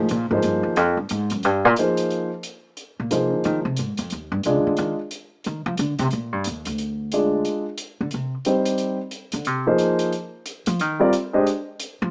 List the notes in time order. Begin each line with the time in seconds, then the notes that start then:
0.09 A#2, closed hi-hat
0.31 G#2 F3 A#3 D#4 G#4 C5
0.42 G2, closed hi-hat
0.63 D#2
0.76 F2, closed hi-hat
0.97 G2
1.09 G#2, closed hi-hat
1.30 F#2, closed hi-hat
1.43 G2, closed hi-hat
1.65 A#2
1.76 F3 A#3 D#4 G#4 C5, closed hi-hat
1.97 closed hi-hat
2.10 closed hi-hat
2.43 closed hi-hat
2.77 closed hi-hat
3.00 A#2
3.11 C3 F3 A#3 D#4 G#4 C5, closed hi-hat
3.32 D3
3.44 D#3, closed hi-hat
3.65 C3
3.77 G#2, closed hi-hat
3.97 F2, closed hi-hat
4.10 D#2, closed hi-hat
4.32 G2
4.43 C3 G#3 D4 F4 G#4 D5, closed hi-hat
4.57 D#3
4.67 D3
4.77 D#3, closed hi-hat
5.11 closed hi-hat
5.44 D#3, closed hi-hat
5.66 F3
5.77 D3, closed hi-hat
5.99 C3, closed hi-hat
6.11 A#2, closed hi-hat
6.32 G2
6.44 D#2, closed hi-hat
6.65 D2, closed hi-hat
6.78 closed hi-hat
7.12 G#3 D4 F4 G#4 D5, closed hi-hat
7.45 closed hi-hat
7.78 closed hi-hat
8.01 D3
8.11 C3, closed hi-hat
8.45 G3 C4 D#4 G4 C5, closed hi-hat
8.65 closed hi-hat
8.78 closed hi-hat
9.11 closed hi-hat
9.32 D3, closed hi-hat
9.45 C3, closed hi-hat
9.67 F3 A#3 D#4 G#4 C5
9.78 closed hi-hat
9.99 closed hi-hat
10.12 closed hi-hat
10.46 closed hi-hat
10.66 F3, closed hi-hat
10.79 D#3, closed hi-hat
10.99 G3 C4 F4 A#4 D5
11.13 closed hi-hat
11.33 G#3 D4 G4 C5 D#5
11.47 closed hi-hat
11.80 closed hi-hat
12.02 F3